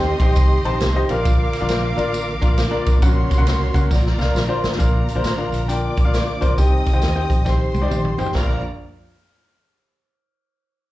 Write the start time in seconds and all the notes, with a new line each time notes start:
Already playing: D#2 C3 D#3 C4 D#4 G4 C5 D#5 G5 C6
0.20 A#1 D#4 G4 C5 G5, kick, ride, tambourine
0.36 C2, kick, ride, tambourine
0.64 A#1 D#4 G4 C5 A5, ride, tambourine
0.81 C2, snare, ride, tambourine
0.96 D#4 G4 C5 D#5
1.09 A#1 A#2 D3 A#3 D4 F4 A#4 F5 D6, ride, tambourine
1.25 kick, ride, tambourine
1.53 snare, ride, tambourine
1.61 A#1 D4 F4 A#4 F5
1.69 A#1, snare, ride, tambourine
1.96 A1 D4 F4 A#4 D5, ride, tambourine
2.14 ride, tambourine
2.41 A#1 D4 F4 A#4 F5, kick, ride, tambourine
2.58 snare, ride, tambourine
2.71 D4 F4 A#4 D5
2.86 A#1, kick, ride, tambourine
2.94 A1
3.02 A#1 A#2 C#3 A#3 C#4 F#4 A#4 C#5 F#5 C6, kick, ride, tambourine
3.31 kick, snare, ride, tambourine
3.38 A#1 C#4 F#4 A#4 F#5
3.46 C2, snare, ride, tambourine
3.74 C#2 C#4 F#4 A#4 F#5, kick, ride, tambourine
3.90 A#1 A#2 D3 F4 D5 A#5, kick, snare, tambourine
4.06 snare
4.19 C2 D4 F4 A#4 F5, snare, tambourine
4.35 A#1, snare, tambourine
4.48 D4 F4 A#4 C5
4.64 A1, snare, tambourine
4.72 snare
4.78 A#1 A#2 D3 A#3 D4 F4 A#4 F5 A#5, kick, closed hi-hat, tambourine
5.08 closed hi-hat, tambourine
5.15 A#1 D4 F4 A#4 C5
5.24 A1, snare, closed hi-hat, tambourine
5.37 D4 F4 A#4 F5
5.52 A#1, closed hi-hat, tambourine
5.68 D4 F4 A#4 D5 G5 D6, closed hi-hat, tambourine
5.97 A#1, kick, closed hi-hat, tambourine
6.05 D4 F4 A#4 F5
6.14 snare, closed hi-hat, tambourine
6.41 A1 D4 F4 A#4 C5, kick, closed hi-hat, tambourine
6.49 B1
6.58 C2 C3 D#3 C4 D#4 G4 C5 D#5 G5 D#6, kick, closed hi-hat, tambourine
6.86 kick, snare, closed hi-hat, tambourine
6.93 C2 D#4 G4 C5 G5
7.02 D#2, snare, closed hi-hat, tambourine
7.15 D#4 G4 C5 G5
7.30 A#1, kick, closed hi-hat, tambourine
7.45 D#4 G4 C5 G5 C6, kick, snare, tambourine
7.74 C2, high tom, tambourine
7.82 D#4 G4 C5 D5
7.91 A#1, mid tom, tambourine
8.05 mid tom
8.18 A1 D#4 G4 C5 G5, floor tom, tambourine
8.26 floor tom
8.35 A#1 D3 A#3 D4 F4 A#4 D5 F5 A#5, kick, snare, tambourine